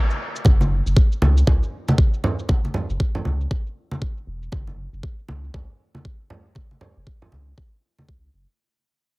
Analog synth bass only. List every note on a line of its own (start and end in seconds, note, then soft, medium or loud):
0.46 0.81 F#1 loud
0.86 0.94 F#1 medium
1.22 1.43 C#2 medium
1.47 1.59 C#2 loud
2.90 2.97 F#1 medium
3.25 3.46 C#2 medium
4.27 4.48 E1 medium
4.53 4.88 F#1 loud
4.93 5.01 F#1 medium
5.29 5.49 C#2 medium
5.54 5.66 C#2 medium
6.97 7.04 F#1 medium
7.32 7.53 C#2 medium
8.09 8.29 C#2 medium
8.34 8.45 F#1 medium